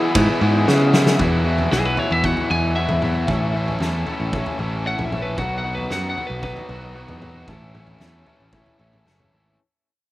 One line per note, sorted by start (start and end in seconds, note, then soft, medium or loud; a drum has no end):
0.00 0.14 E2 medium
0.00 0.14 B2 medium
0.00 0.15 E3 medium
0.00 0.15 G#3 medium
0.00 0.15 B3 loud
0.00 0.16 E4 medium
0.00 0.64 E4 loud
0.00 0.16 G#4 loud
0.15 0.39 E2 loud
0.15 0.27 G#2 loud
0.15 0.40 B2 loud
0.15 0.41 E3 loud
0.15 0.41 G#3 loud
0.15 0.41 B3 loud
0.15 0.41 E4 loud
0.15 0.42 G#4 loud
0.15 kick loud
0.15 ride bell medium
0.40 0.65 E2 medium
0.40 0.65 G#2 medium
0.40 0.66 B2 loud
0.40 0.66 E3 loud
0.40 0.66 G#3 loud
0.40 0.67 B3 medium
0.40 0.67 E4 loud
0.40 0.68 G#4 loud
0.67 0.91 E2 loud
0.67 0.92 B2 loud
0.67 1.16 C#3 loud
0.67 0.92 E3 loud
0.67 0.93 G#3 loud
0.67 0.93 B3 loud
0.67 0.93 E4 loud
0.67 0.93 G#4 loud
0.67 snare medium
0.92 1.17 E2 medium
0.92 1.17 B2 medium
0.92 1.18 E3 loud
0.92 1.18 G#3 loud
0.92 1.18 B3 medium
0.92 1.18 E4 medium
0.92 1.18 G#4 medium
0.92 snare loud
1.06 snare loud
1.18 1.43 E2 loud
1.18 1.67 E2 loud
1.18 1.44 B2 medium
1.18 1.45 E3 loud
1.18 1.44 F#3 medium
1.18 1.45 B3 medium
1.18 1.46 E4 medium
1.18 1.45 F#4 medium
1.18 kick loud
1.18 floor tom medium
1.45 1.69 E2 medium
1.45 1.70 B2 medium
1.45 1.71 E3 medium
1.45 1.71 F#3 medium
1.45 1.71 B3 medium
1.45 1.72 E4 medium
1.45 1.71 F#4 medium
1.58 floor tom medium
1.70 1.95 B1 medium
1.70 1.95 E2 medium
1.70 1.96 B2 medium
1.70 1.97 E3 medium
1.70 1.97 F#3 medium
1.70 1.97 B3 loud
1.70 1.98 E4 medium
1.70 1.97 F#4 medium
1.70 1.85 G#4 medium
1.70 snare medium
1.85 1.97 B4 medium
1.96 2.22 E2 medium
1.96 2.23 B2 medium
1.96 2.23 E3 medium
1.96 2.23 F#3 medium
1.96 2.23 B3 medium
1.96 2.24 E4 medium
1.96 2.24 F#4 medium
1.96 2.12 C#5 medium
1.96 floor tom medium
2.11 2.34 E2 medium
2.11 2.24 E5 medium
2.23 2.48 E2 medium
2.23 2.48 B2 medium
2.23 2.49 E3 medium
2.23 2.49 F#3 medium
2.23 2.49 B3 medium
2.23 2.49 E4 medium
2.23 2.50 F#4 medium
2.23 2.49 F#5 medium
2.23 kick loud
2.37 floor tom medium
2.49 2.74 E2 medium
2.49 2.85 E2 medium
2.49 2.75 B2 medium
2.49 2.75 E3 medium
2.49 2.76 F#3 medium
2.49 2.76 B3 medium
2.49 2.76 E4 medium
2.49 2.76 F#4 medium
2.49 2.75 G#5 medium
2.75 3.00 E2 medium
2.75 3.01 B2 loud
2.75 3.02 E3 medium
2.75 3.02 F#3 loud
2.75 3.02 B3 loud
2.75 3.02 E4 loud
2.75 3.03 F#4 loud
2.75 3.77 E5 medium
2.89 3.25 E2 medium
2.89 floor tom medium
2.89 mid tom medium
3.02 3.26 E2 medium
3.02 3.26 B2 medium
3.02 3.27 E3 medium
3.02 3.27 F#3 medium
3.02 3.27 B3 medium
3.02 3.27 E4 medium
3.02 3.27 F#4 medium
3.02 mid tom medium
3.28 3.76 A1 loud
3.28 3.52 A2 medium
3.28 3.53 E3 medium
3.28 3.53 A3 medium
3.28 3.54 C#4 loud
3.28 3.55 E4 loud
3.28 3.54 A4 loud
3.28 kick loud
3.28 floor tom medium
3.53 3.79 A2 medium
3.53 3.80 E3 medium
3.53 3.80 A3 medium
3.53 3.80 C#4 medium
3.53 3.81 E4 medium
3.53 3.81 A4 medium
3.68 floor tom medium
3.80 4.04 E2 medium
3.80 4.05 A2 medium
3.80 4.06 E3 loud
3.80 4.06 A3 medium
3.80 4.07 C#4 medium
3.80 4.08 E4 loud
3.80 4.07 A4 loud
3.80 snare medium
4.06 4.31 A2 medium
4.06 4.32 E3 medium
4.06 4.33 A3 medium
4.06 4.33 C#4 medium
4.06 4.34 E4 medium
4.06 4.34 A4 medium
4.06 floor tom medium
4.20 4.43 A1 medium
4.33 4.57 A2 medium
4.33 4.57 E3 medium
4.33 4.58 A3 medium
4.33 4.58 C#4 medium
4.33 4.60 E4 medium
4.33 4.59 A4 medium
4.33 kick loud
4.46 floor tom medium
4.58 4.94 A1 medium
4.58 4.84 A2 medium
4.58 4.84 E3 medium
4.58 4.85 A3 medium
4.58 4.85 C#4 loud
4.58 4.86 E4 medium
4.58 4.86 A4 medium
4.85 5.10 A2 medium
4.85 5.10 E3 loud
4.85 5.11 A3 loud
4.85 5.11 C#4 loud
4.85 5.13 E4 loud
4.85 5.12 A4 medium
4.85 5.05 F#5 medium
4.99 5.34 A#1 medium
4.99 floor tom medium
4.99 mid tom medium
5.05 5.21 E5 medium
5.11 5.36 A2 medium
5.11 5.36 E3 medium
5.11 5.36 A3 medium
5.11 5.37 C#4 medium
5.11 5.37 E4 medium
5.11 5.37 A4 medium
5.11 mid tom medium
5.22 5.38 B4 medium
5.37 5.86 B1 loud
5.37 5.63 B2 medium
5.37 5.63 D#3 medium
5.37 5.63 F#3 medium
5.37 5.64 B3 medium
5.37 5.64 D#4 medium
5.37 5.64 F#4 loud
5.37 5.55 F#5 medium
5.37 kick loud
5.37 floor tom medium
5.58 5.74 F#5 medium
5.64 5.88 B2 medium
5.64 5.90 D#3 medium
5.64 5.89 F#3 medium
5.64 5.90 B3 medium
5.64 5.90 D#4 medium
5.64 5.90 F#4 medium
5.75 5.91 B4 medium
5.75 floor tom medium
5.90 6.14 F#2 medium
5.90 6.15 B2 medium
5.90 6.16 D#3 loud
5.90 6.16 F#3 medium
5.90 6.16 B3 loud
5.90 6.17 D#4 loud
5.90 6.17 F#4 medium
5.90 6.08 F#5 medium
5.90 snare medium
6.10 6.26 F#5 medium
6.17 6.41 B2 medium
6.17 6.42 D#3 medium
6.17 6.42 F#3 medium
6.17 6.42 B3 medium
6.17 6.43 D#4 medium
6.17 6.43 F#4 medium
6.17 floor tom medium
6.27 6.53 B1 medium
6.27 6.42 B4 medium
6.42 6.68 B2 medium
6.42 6.69 D#3 medium
6.42 6.68 F#3 medium
6.42 6.68 B3 medium
6.42 6.69 D#4 medium
6.42 6.69 F#4 medium
6.42 7.97 B4 medium
6.42 kick loud
6.56 floor tom medium
6.69 7.04 B1 medium
6.69 6.93 B2 medium
6.69 6.94 D#3 medium
6.69 6.94 F#3 medium
6.69 6.95 B3 medium
6.69 6.95 D#4 medium
6.69 6.95 F#4 medium
6.95 7.19 B2 medium
6.95 7.21 D#3 loud
6.95 7.20 F#3 loud
6.95 7.20 B3 loud
6.95 7.20 D#4 loud
6.95 7.21 F#4 loud
7.08 7.44 E2 medium
7.08 floor tom medium
7.08 mid tom medium
7.21 7.46 B2 medium
7.21 7.47 D#3 medium
7.21 7.46 F#3 medium
7.21 7.46 B3 medium
7.21 7.46 D#4 medium
7.21 7.47 F#4 medium
7.21 mid tom medium
7.47 7.96 A1 loud
7.47 7.72 A2 medium
7.47 7.72 E3 medium
7.47 7.73 A3 medium
7.47 7.73 C#4 loud
7.47 7.75 E4 loud
7.47 7.74 A4 medium
7.47 kick loud
7.47 floor tom medium
7.73 7.98 A2 medium
7.73 7.98 E3 medium
7.73 7.99 A3 medium
7.73 7.99 C#4 medium
7.73 8.01 E4 medium
7.73 7.99 A4 medium
7.73 mid tom medium
7.87 floor tom medium
7.99 8.24 E2 medium
7.99 8.25 A2 medium
7.99 8.25 E3 medium
7.99 8.26 A3 medium
7.99 8.26 C#4 loud
7.99 8.27 E4 medium
7.99 8.26 A4 loud
7.99 snare medium
8.26 8.51 A2 medium
8.26 8.51 E3 medium
8.26 8.52 A3 medium
8.26 8.52 C#4 medium
8.26 8.54 E4 medium
8.26 8.53 A4 medium
8.26 floor tom medium
8.40 8.64 A1 medium
8.52 8.77 A2 medium
8.52 8.77 E3 medium
8.52 8.78 A3 medium
8.52 8.78 C#4 medium
8.52 8.80 E4 medium
8.52 8.78 A4 medium
8.52 kick loud
8.66 floor tom medium
8.78 9.03 A1 medium
8.78 9.04 A2 medium
8.78 9.04 E3 medium
8.78 9.05 A3 medium
8.78 9.05 C#4 medium
8.78 9.06 E4 medium
8.78 9.06 A4 medium
8.93 mid tom medium
9.05 9.29 F#1 medium
9.05 9.30 A2 medium
9.05 9.31 E3 loud
9.05 9.32 A3 loud
9.05 9.32 C#4 medium
9.05 9.33 E4 loud
9.05 9.32 A4 loud
9.05 snare medium
9.20 floor tom medium
9.20 mid tom medium
9.32 9.56 G#1 medium
9.32 9.57 A2 medium
9.32 9.57 E3 medium
9.32 9.57 A3 medium
9.32 9.57 C#4 medium
9.32 9.58 E4 medium
9.32 9.57 A4 medium